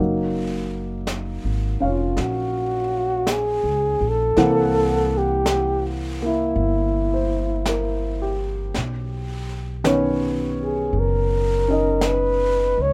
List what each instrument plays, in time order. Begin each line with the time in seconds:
Already playing: grand piano F#3 A#3
0.00 upright bass F#1, grand piano D#4
1.07 brush sweep, snare, hi-hat pedal
1.44 upright bass G#1
1.80 upright bass F1, grand piano C#4 C#5 F5
1.87 flugelhorn F4
2.17 upright bass A#1, flugelhorn F#4, brush sweep, snare
3.27 flugelhorn G#4, brush sweep, snare, hi-hat pedal
3.64 upright bass C#2
4.01 upright bass A#1
4.09 flugelhorn A4
4.37 upright bass C2, grand piano E3 A#3 C4 F#5, brush sweep, snare
5.17 flugelhorn G4
5.46 brush sweep, snare, hi-hat pedal
6.22 grand piano A#3 E4, flugelhorn E4
6.56 upright bass G1, brush sweep
7.14 grand piano C5
7.66 grand piano A#4, brush sweep, snare, hi-hat pedal
8.22 grand piano G4
8.74 upright bass B1, brush sweep, snare
9.84 grand piano D#3 B3 C#4 C#5, brush sweep, snare, hi-hat pedal
10.63 flugelhorn G#4
10.93 upright bass F#1, brush sweep
10.99 flugelhorn A#4
11.68 grand piano C#4 D#4 D#5
12.01 brush sweep, snare, hi-hat pedal
12.06 flugelhorn B4
12.78 upright bass C#2
12.82 flugelhorn C#5